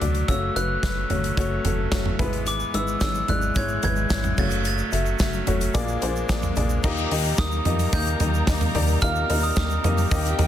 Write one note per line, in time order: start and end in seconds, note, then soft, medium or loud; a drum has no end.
0.00 0.24 D2 medium
0.00 0.30 A2 medium
0.00 2.15 F#3 medium
0.00 0.29 A3 medium
0.00 2.15 A3 medium
0.00 0.26 D4 medium
0.00 0.29 F#4 medium
0.00 0.29 C#5 medium
0.00 0.31 D5 loud
0.00 0.31 D6 medium
0.00 closed hi-hat medium
0.00 floor tom medium
0.15 closed hi-hat soft
0.28 0.51 F#1 loud
0.28 1.06 C#3 medium
0.28 0.54 A3 medium
0.28 2.18 C#4 medium
0.28 0.54 F#4 medium
0.28 0.54 C#5 loud
0.28 0.56 E6 medium
0.28 kick medium
0.28 closed hi-hat medium
0.56 0.78 F#1 medium
0.56 0.81 A3 medium
0.56 0.81 F#4 medium
0.56 0.81 B4 medium
0.56 1.61 F#6 medium
0.56 closed hi-hat medium
0.83 1.05 F#1 loud
0.83 1.08 A3 medium
0.83 1.09 F#4 medium
0.83 1.08 B4 medium
0.83 kick loud
0.83 snare medium
0.83 closed hi-hat medium
1.10 1.32 G1 medium
1.10 1.35 A3 medium
1.10 1.35 F#4 medium
1.10 1.35 C#5 medium
1.10 closed hi-hat medium
1.10 floor tom medium
1.24 closed hi-hat medium
1.37 1.60 F#1 loud
1.37 1.63 A3 loud
1.37 1.63 F#4 loud
1.37 1.63 C#5 loud
1.37 kick loud
1.37 closed hi-hat medium
1.65 1.87 F#1 loud
1.65 1.90 A3 medium
1.65 1.90 F#4 medium
1.65 1.90 A4 medium
1.65 closed hi-hat medium
1.65 floor tom medium
1.91 2.14 F#1 loud
1.91 2.17 A3 medium
1.91 2.17 F#4 medium
1.91 2.17 C#5 medium
1.91 kick loud
1.91 snare loud
1.91 closed hi-hat medium
2.05 floor tom medium
2.19 2.64 G#1 loud
2.19 2.98 G#2 medium
2.19 4.36 E3 medium
2.19 2.70 G#3 medium
2.19 4.36 G#3 medium
2.19 4.36 B3 medium
2.19 2.70 E4 medium
2.19 2.70 B4 loud
2.19 kick medium
2.19 closed hi-hat medium
2.19 floor tom medium
2.33 closed hi-hat soft
2.46 2.73 D6 medium
2.46 closed hi-hat medium
2.46 shaker medium
2.60 shaker soft
2.74 2.97 G#1 medium
2.74 2.99 G#3 medium
2.74 2.99 E4 medium
2.74 2.99 B4 medium
2.74 3.01 E6 medium
2.74 closed hi-hat medium
2.87 shaker soft
3.01 3.24 G#1 loud
3.01 3.27 G#3 medium
3.01 3.27 E4 medium
3.01 3.27 C#5 medium
3.01 3.30 E6 medium
3.01 kick loud
3.01 snare loud
3.01 closed hi-hat medium
3.01 shaker medium
3.15 shaker soft
3.28 3.51 G#1 loud
3.28 3.54 G#3 medium
3.28 3.54 E4 medium
3.28 3.54 D5 medium
3.28 3.57 F#6 medium
3.28 closed hi-hat medium
3.28 floor tom medium
3.42 shaker soft
3.55 3.78 G#1 loud
3.55 3.82 G#3 medium
3.55 3.82 E4 medium
3.55 3.82 C#5 loud
3.55 3.82 G#6 medium
3.55 kick loud
3.55 closed hi-hat medium
3.55 shaker medium
3.68 shaker soft
3.83 4.06 G#1 loud
3.83 4.09 G#3 medium
3.83 4.09 E4 medium
3.83 4.09 B4 medium
3.83 4.35 G#6 loud
3.83 closed hi-hat medium
3.83 floor tom medium
3.83 shaker soft
3.96 shaker soft
4.10 4.33 G#1 loud
4.10 4.36 G#3 medium
4.10 4.36 E4 medium
4.10 4.36 C#5 medium
4.10 kick loud
4.10 snare loud
4.10 closed hi-hat medium
4.10 shaker medium
4.24 floor tom medium
4.24 shaker soft
4.37 4.83 F#1 loud
4.37 5.16 C#3 medium
4.37 5.73 F#3 medium
4.37 4.89 A3 medium
4.37 5.73 A3 medium
4.37 5.73 C#4 medium
4.37 4.89 F#4 medium
4.37 4.89 C#5 medium
4.37 4.64 A6 loud
4.37 kick medium
4.37 floor tom medium
4.37 crash medium
4.37 shaker soft
4.50 closed hi-hat soft
4.50 shaker medium
4.64 6.26 A6 medium
4.64 closed hi-hat medium
4.64 shaker medium
4.78 shaker soft
4.92 5.15 F#1 medium
4.92 5.18 A3 medium
4.92 5.18 F#4 medium
4.92 5.18 E5 medium
4.92 closed hi-hat medium
4.92 shaker medium
5.06 shaker soft
5.19 5.42 F#1 loud
5.19 5.45 A3 medium
5.19 5.45 F#4 medium
5.19 5.45 E5 medium
5.19 kick loud
5.19 snare loud
5.19 closed hi-hat medium
5.19 shaker medium
5.33 shaker medium
5.47 5.70 F#1 medium
5.47 5.73 A3 medium
5.47 5.73 F#4 medium
5.47 5.73 C#5 loud
5.47 closed hi-hat medium
5.47 floor tom medium
5.47 shaker soft
5.61 closed hi-hat medium
5.61 shaker medium
5.74 5.97 A#1 loud
5.74 6.52 A#2 medium
5.74 6.52 F3 medium
5.74 6.83 G#3 medium
5.74 6.00 A#3 loud
5.74 6.81 A#3 medium
5.74 6.83 D4 medium
5.74 6.00 G#4 loud
5.74 6.00 D5 loud
5.74 kick loud
5.74 closed hi-hat loud
5.74 shaker medium
5.88 shaker soft
6.02 6.25 A#1 loud
6.02 6.27 A#3 medium
6.02 6.27 G#4 medium
6.02 6.27 C5 medium
6.02 closed hi-hat medium
6.02 shaker soft
6.16 shaker medium
6.29 6.52 A#1 loud
6.29 6.55 A#3 loud
6.29 6.55 G#4 medium
6.29 6.55 D5 loud
6.29 kick loud
6.29 snare loud
6.29 closed hi-hat medium
6.29 shaker medium
6.42 floor tom medium
6.42 shaker medium
6.56 6.79 A#1 loud
6.56 6.82 A#3 medium
6.56 6.82 G#4 medium
6.56 6.82 D5 medium
6.56 closed hi-hat medium
6.56 floor tom medium
6.56 shaker medium
6.69 shaker medium
6.83 7.07 D#2 medium
6.83 7.62 A#2 medium
6.83 10.47 G3 medium
6.83 9.00 A#3 medium
6.83 7.09 A#3 loud
6.83 10.47 D#4 medium
6.83 7.09 D#4 loud
6.83 7.09 G4 loud
6.83 10.07 A#4 medium
6.83 7.10 D#5 loud
6.83 10.07 A#5 medium
6.83 kick loud
6.83 crash medium
6.83 shaker medium
6.97 shaker soft
7.11 7.34 D#2 medium
7.11 7.37 A#3 medium
7.11 7.37 D#4 medium
7.11 7.37 G4 medium
7.11 7.37 D#5 loud
7.11 hi-hat pedal medium
7.11 open hi-hat medium
7.25 shaker medium
7.37 7.61 D#2 loud
7.37 7.64 A#3 medium
7.37 7.64 D#4 medium
7.37 7.64 G4 medium
7.37 7.64 A#4 medium
7.37 7.90 D#6 medium
7.37 kick loud
7.37 snare loud
7.37 hi-hat pedal medium
7.37 open hi-hat medium
7.37 shaker medium
7.52 shaker medium
7.65 7.88 F2 medium
7.65 7.91 A#3 medium
7.65 7.91 D#4 medium
7.65 7.91 G4 medium
7.65 7.91 D#5 medium
7.65 floor tom medium
7.65 hi-hat pedal medium
7.65 open hi-hat medium
7.65 shaker soft
7.79 open hi-hat medium
7.79 shaker medium
7.92 8.15 D#2 loud
7.92 8.19 A#3 loud
7.92 8.19 D#4 medium
7.92 8.19 G4 loud
7.92 8.19 D#5 loud
7.92 8.99 G6 loud
7.92 kick loud
7.92 hi-hat pedal medium
7.92 open hi-hat loud
7.92 shaker medium
8.06 hi-hat pedal medium
8.06 shaker medium
8.20 8.43 D#2 loud
8.20 8.46 A#3 medium
8.20 8.46 D#4 medium
8.20 8.46 G4 medium
8.20 8.46 D#5 medium
8.20 floor tom medium
8.20 hi-hat pedal medium
8.20 open hi-hat medium
8.20 shaker soft
8.34 shaker medium
8.47 8.70 D#2 loud
8.47 8.73 A#3 medium
8.47 8.73 D#4 medium
8.47 8.73 G4 medium
8.47 8.73 D#5 medium
8.47 kick loud
8.47 snare loud
8.47 hi-hat pedal medium
8.47 open hi-hat medium
8.47 shaker medium
8.61 floor tom medium
8.61 shaker medium
8.75 8.97 D#2 loud
8.75 9.00 A#3 medium
8.75 9.00 D#4 medium
8.75 9.00 G4 medium
8.75 9.00 D5 loud
8.75 floor tom medium
8.75 hi-hat pedal medium
8.75 open hi-hat medium
8.88 shaker medium
9.01 9.25 D#2 loud
9.01 9.80 A#2 medium
9.01 9.28 A#3 loud
9.01 10.47 C4 medium
9.01 9.28 D#4 medium
9.01 9.28 G4 medium
9.01 9.28 F5 loud
9.01 9.44 F6 loud
9.01 kick medium
9.01 hi-hat pedal medium
9.01 open hi-hat loud
9.01 shaker medium
9.15 shaker soft
9.29 9.52 D#2 loud
9.29 9.55 A#3 medium
9.29 9.55 D#4 medium
9.29 9.55 G4 medium
9.29 9.55 D#5 medium
9.29 hi-hat pedal medium
9.29 open hi-hat medium
9.43 9.55 D#6 medium
9.43 shaker medium
9.56 9.79 D#2 loud
9.56 9.82 A#3 medium
9.56 9.82 D#4 medium
9.56 9.82 G4 medium
9.56 9.82 D#5 medium
9.56 10.47 D#6 medium
9.56 kick loud
9.56 snare loud
9.56 hi-hat pedal medium
9.56 open hi-hat loud
9.56 shaker medium
9.70 shaker medium
9.84 10.06 F2 loud
9.84 10.09 A#3 medium
9.84 10.10 D#4 medium
9.84 10.10 G4 medium
9.84 10.10 D#5 loud
9.84 floor tom medium
9.84 hi-hat pedal medium
9.84 open hi-hat medium
9.84 shaker medium
9.98 open hi-hat medium
9.98 shaker medium
10.11 10.34 D#2 loud
10.11 10.37 A#3 loud
10.11 10.37 D#4 medium
10.11 10.37 G4 medium
10.11 10.47 G4 medium
10.11 10.37 D#5 loud
10.11 10.47 G5 medium
10.11 kick loud
10.11 hi-hat pedal medium
10.11 open hi-hat loud
10.11 shaker medium
10.25 hi-hat pedal medium
10.25 shaker medium
10.38 10.47 D#2 loud
10.38 10.47 A#3 medium
10.38 10.47 D#4 medium
10.38 10.47 G4 medium
10.38 10.47 D#5 loud
10.38 floor tom medium
10.38 hi-hat pedal medium
10.38 open hi-hat medium
10.38 shaker soft